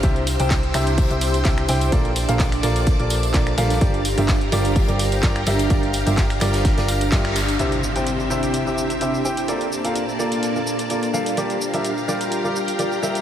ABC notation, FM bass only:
X:1
M:4/4
L:1/16
Q:"Swing 16ths" 1/4=127
K:Gdor
V:1 name="FM bass" clef=bass
C,,3 C,,3 C,,3 C,,3 C,,2 C,,2 | B,,,3 B,,,3 B,,,3 B,,,3 B,,,2 B,,,2 | G,,,3 G,,,3 G,,,3 G,,,3 G,,,2 G,,,2 | G,,,3 G,,,3 G,,,3 G,,,3 G,,,4 |
z16 | z16 | z16 |]